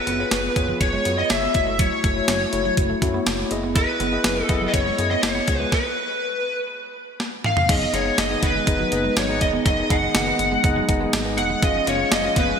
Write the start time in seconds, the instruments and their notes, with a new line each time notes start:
Already playing: tine electric piano B3 F4 G#4 C#5, lead electric guitar B4
0.07 analog synth bass F#1, clean electric guitar B3, closed hi-hat
0.19 tine electric piano B3 F4 G#4 C#5
0.31 analog synth bass F#1, clean electric guitar C#4, snare, closed hi-hat
0.56 analog synth bass F#1, tine electric piano B3 F4 G#4 C#5, muted clean electric guitar stroke, kick, closed hi-hat
0.68 clean electric guitar F3
0.81 analog synth bass F#1, lead electric guitar C#5, kick, closed hi-hat
0.93 clean electric guitar G#3
1.05 analog synth bass F#2, tine electric piano B3 F4 G#4 C#5, muted clean electric guitar stroke, closed hi-hat
1.18 clean electric guitar B3, lead electric guitar D#5
1.30 analog synth bass F#1, lead electric guitar E5, snare, closed hi-hat
1.42 clean electric guitar B3
1.54 analog synth bass F#1, tine electric piano A3 E4 F#4 C#5, muted clean electric guitar stroke, kick, closed hi-hat
1.67 clean electric guitar A3
1.79 clean electric guitar F#3, lead electric guitar C#5, kick, closed hi-hat
1.92 muted clean electric guitar stroke
2.04 analog synth bass F#1, clean electric guitar A3, kick, closed hi-hat
2.16 tine electric piano A3 E4 F#4 C#5
2.28 analog synth bass F#1, clean electric guitar C#4, snare, closed hi-hat
2.52 analog synth bass F#1, tine electric piano A3 E4 F#4 C#5, muted clean electric guitar stroke, closed hi-hat
2.65 clean electric guitar F#3
2.77 analog synth bass F#1, kick, closed hi-hat
2.90 clean electric guitar A3
3.02 analog synth bass F#2, tine electric piano A3 E4 F#4 C#5, muted clean electric guitar stroke, kick, closed hi-hat
3.14 clean electric guitar B3
3.26 analog synth bass F#1, clean electric guitar A3, snare, closed hi-hat
3.39 muted clean electric guitar stroke
3.51 analog synth bass F#1, tine electric piano B3 E4 G#4 D#5, closed hi-hat
3.63 clean electric guitar B3
3.76 clean electric guitar E4, lead electric guitar B4, kick, closed hi-hat
3.88 muted clean electric guitar stroke
4.00 analog synth bass F#1, clean electric guitar B3, closed hi-hat
4.12 tine electric piano B3 E4 G#4 D#5
4.24 analog synth bass F#1, clean electric guitar C#4, snare, closed hi-hat
4.43 lead electric guitar A4
4.49 analog synth bass F#1, tine electric piano B3 E4 G#4 D#5, muted clean electric guitar stroke, kick, closed hi-hat
4.61 clean electric guitar F#3
4.68 lead electric guitar D#5
4.74 analog synth bass F#1, lead electric guitar C#5, kick, closed hi-hat
4.86 clean electric guitar G#3
4.98 analog synth bass F#2, tine electric piano B3 E4 G#4 D#5, muted clean electric guitar stroke, closed hi-hat
5.11 clean electric guitar B3, lead electric guitar D#5
5.23 analog synth bass F#1, lead electric guitar C#5, snare, closed hi-hat
5.35 clean electric guitar B3
5.47 analog synth bass C#2, tine electric piano B3 F4 G#4 C#5, muted clean electric guitar stroke, kick, closed hi-hat
5.60 clean electric guitar G#3
5.72 lead electric guitar B4, kick, snare
7.20 snare
7.44 lead electric guitar F5, mid tom
7.57 floor tom
7.68 analog synth bass F#1, analog synth pad D#3 G#3 B3, tine electric piano B3 D#4 G#4 D#5, clean electric guitar C#4, lead electric guitar D#5, kick, closed hi-hat, crash
7.93 analog synth bass F#1, tine electric piano B3 D#4 G#4 D#5, clean electric guitar B3, lead electric guitar C#5, closed hi-hat
8.06 muted clean electric guitar stroke
8.18 analog synth bass F#1, lead electric guitar D#5, muted clean electric guitar stroke, snare, closed hi-hat
8.30 tine electric piano B3 D#4 G#4 D#5
8.43 analog synth bass F#1, clean electric guitar B3, lead electric guitar B4, kick, closed hi-hat
8.55 clean electric guitar G#3
8.67 analog synth bass F#1, tine electric piano B3 D#4 G#4 D#5, kick, closed hi-hat
8.79 clean electric guitar F#3
8.91 analog synth bass F#1, tine electric piano B3 D#4 G#4 D#5, muted clean electric guitar stroke, closed hi-hat
9.04 clean electric guitar G#3
9.17 analog synth bass G#1, clean electric guitar F#3, lead electric guitar C#5, snare, closed hi-hat
9.29 tine electric piano B3 D#4 G#4 D#5, muted clean electric guitar stroke
9.41 analog synth bass E1, lead electric guitar D#5, kick, closed hi-hat
9.53 clean electric guitar B3
9.65 analog synth bass F#1, tine electric piano B3 D#4 G#4 D#5, clean electric guitar C#4, lead electric guitar D#5, kick, closed hi-hat
9.90 analog synth bass F#1, tine electric piano B3 D#4 G#4 D#5, clean electric guitar B3, lead electric guitar F#5, kick, closed hi-hat
10.03 muted clean electric guitar stroke
10.15 analog synth bass F#1, muted clean electric guitar stroke, snare, closed hi-hat
10.27 tine electric piano B3 D#4 G#4 D#5
10.39 analog synth bass F#1, clean electric guitar B3, closed hi-hat
10.52 clean electric guitar G#3
10.64 analog synth bass F#1, tine electric piano B3 D#4 G#4 D#5, kick, closed hi-hat
10.76 clean electric guitar F#3
10.88 analog synth bass F#1, tine electric piano B3 D#4 G#4 D#5, muted clean electric guitar stroke, kick, closed hi-hat
11.01 clean electric guitar G#3
11.13 analog synth bass G#1, clean electric guitar F#3, snare, closed hi-hat
11.25 tine electric piano B3 D#4 G#4 D#5
11.38 analog synth bass E1, lead electric guitar F#5, muted clean electric guitar stroke, closed hi-hat
11.50 clean electric guitar G#3
11.62 analog synth bass F#1, analog synth pad F3 C#4, clean electric guitar C#4, tine electric piano C#4 F4 G#4 F5, lead electric guitar D#5, kick, closed hi-hat
11.87 analog synth bass F#1, clean electric guitar B3, tine electric piano C#4 F4 G#4 F5, lead electric guitar C#5, closed hi-hat
12.00 muted clean electric guitar stroke
12.12 analog synth bass F#1, lead electric guitar D#5, muted clean electric guitar stroke, snare, closed hi-hat
12.24 tine electric piano C#4 F4 G#4 F5
12.36 analog synth bass F#1, clean electric guitar B3, lead electric guitar B4, kick, closed hi-hat
12.49 clean electric guitar G#3